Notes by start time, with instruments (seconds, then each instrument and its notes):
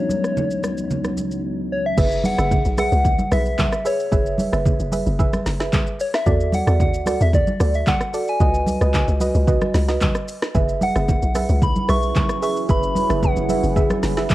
Already playing: ambient pad C#2 C#3 B3 D#4 F#4, tine electric piano F#3 G#3 B3 C#4 D#4, soft synth lead C#5
0.09 high conga, shaker
0.24 cross-stick, shaker
0.37 low conga, shaker
0.51 shaker
0.63 cross-stick, high conga, shaker
0.78 shaker
0.91 low conga, shaker
1.04 cross-stick, high conga, shaker
1.17 high conga, shaker
1.31 shaker
1.72 soft synth lead C#5
1.86 soft synth lead E5
1.97 log drum bass F#1, synth pluck G#4 B4 E5, kick, crash, low conga, shaker
2.12 shaker
2.24 soft synth lead F#5, open hi-hat, high conga, shaker
2.38 log drum bass F#1, synth pluck G#4 B4 E5, cross-stick, shaker
2.51 kick, low conga, shaker
2.65 log drum bass B1, shaker
2.77 synth pluck G#4 B4 E5, soft synth lead F#5, cross-stick, open hi-hat, high conga, shaker
2.92 log drum bass C#2, shaker
3.05 kick, low conga, shaker
3.19 high conga, shaker
3.31 log drum bass B1, synth pluck G#4 B4 E5, soft synth lead E5, cross-stick, open hi-hat, high conga, shaker
3.46 shaker
3.58 kick, clap, high conga, low conga, shaker
3.72 cross-stick, shaker
3.85 synth pluck G#4 B4 E5, soft synth lead C#5, open hi-hat, shaker
4.00 shaker
4.12 log drum bass F#1, synth pluck G#4 B4 E5, kick, low conga, shaker
4.26 shaker
4.38 open hi-hat, high conga, shaker
4.52 log drum bass F#1, synth pluck G#4 B4 E5, cross-stick, shaker
4.65 kick, low conga, shaker
4.80 log drum bass F#1, shaker
4.92 synth pluck G#4 B4 E5, open hi-hat, high conga, shaker
5.06 log drum bass F#1, shaker
5.19 synth pluck G#4 B4 E5, kick, low conga, shaker
5.33 cross-stick, high conga, shaker
5.46 log drum bass F#1, snare, open hi-hat, high conga, shaker
5.60 synth pluck G#4 B4 E5, snare, shaker
5.73 kick, clap, high conga, low conga, shaker
5.87 shaker
6.00 soft synth lead C#5, open hi-hat, shaker
6.14 soft synth lead E5, cross-stick, snare, shaker
6.26 log drum bass E2, synth pluck F#4 A4 D5, kick, low conga, shaker
6.40 shaker
6.52 soft synth lead F#5, open hi-hat, high conga, shaker
6.67 log drum bass E2, synth pluck F#4 A4 D5, cross-stick, shaker
6.80 soft synth lead F#5, kick, low conga, shaker
6.94 log drum bass D2, shaker
7.06 synth pluck F#4 A4 D5, cross-stick, open hi-hat, high conga, shaker
7.21 log drum bass E2, soft synth lead E5, shaker
7.33 soft synth lead D5, kick, low conga, shaker
7.47 high conga, shaker
7.60 log drum bass D2, synth pluck F#4 A4 D5, cross-stick, open hi-hat, high conga, shaker
7.74 soft synth lead E5, shaker
7.87 soft synth lead F#5, kick, clap, high conga, low conga, shaker
8.01 cross-stick, shaker
8.14 synth pluck F#4 A4 D5, open hi-hat, shaker
8.28 soft synth lead G#5, shaker
8.40 log drum bass C#2, synth pluck F#4 B4 D#5, kick, low conga, shaker
8.54 shaker
8.67 open hi-hat, high conga, shaker
8.81 log drum bass C#2, synth pluck F#4 B4 D#5, cross-stick, shaker
8.94 kick, clap, low conga, shaker
9.08 log drum bass C#2, shaker
9.20 synth pluck F#4 B4 D#5, open hi-hat, high conga, shaker
9.35 log drum bass C#2, shaker
9.47 synth pluck F#4 B4 D#5, kick, low conga, shaker
9.61 cross-stick, high conga, shaker
9.74 log drum bass C#2, snare, open hi-hat, high conga, shaker
9.88 synth pluck F#4 B4 D#5, snare, shaker
10.01 kick, clap, high conga, low conga, shaker
10.15 cross-stick, shaker
10.28 open hi-hat, shaker
10.42 cross-stick, snare, shaker
10.54 log drum bass F#1, ambient pad F#3 C#4 E4 G#4 B4, synth pluck G#4 B4 E5, kick, low conga, shaker
10.69 shaker
10.81 soft synth lead F#5, open hi-hat, high conga, shaker
10.95 log drum bass F#1, synth pluck G#4 B4 E5, cross-stick, shaker
11.08 kick, low conga, shaker
11.22 log drum bass B1, shaker
11.34 synth pluck G#4 B4 E5, cross-stick, open hi-hat, high conga, shaker
11.49 log drum bass C#2, shaker
11.62 soft synth lead B5, kick, low conga, shaker
11.76 high conga, shaker
11.88 log drum bass B1, synth pluck G#4 B4 E5, soft synth lead C#6, cross-stick, open hi-hat, high conga, shaker
12.03 shaker
12.15 kick, clap, high conga, low conga, shaker
12.29 cross-stick, shaker
12.42 synth pluck G#4 B4 E5, soft synth lead C#6, open hi-hat, shaker
12.57 shaker
12.69 log drum bass F#1, synth pluck G#4 B4 E5, soft synth lead B5, kick, low conga, shaker
12.83 shaker
12.95 open hi-hat, high conga, shaker
13.10 log drum bass F#1, synth pluck G#4 B4 E5, cross-stick, shaker
13.23 soft synth lead F#5, kick, low conga, shaker
13.37 log drum bass F#1, shaker
13.49 synth pluck G#4 B4 E5, open hi-hat, high conga, shaker
13.63 log drum bass F#1, shaker
13.76 synth pluck G#4 B4 E5, kick, low conga, shaker
13.90 cross-stick, high conga, shaker
14.03 log drum bass F#1, snare, open hi-hat, high conga, shaker
14.17 synth pluck G#4 B4 E5, snare, shaker
14.30 kick, clap, high conga, low conga, shaker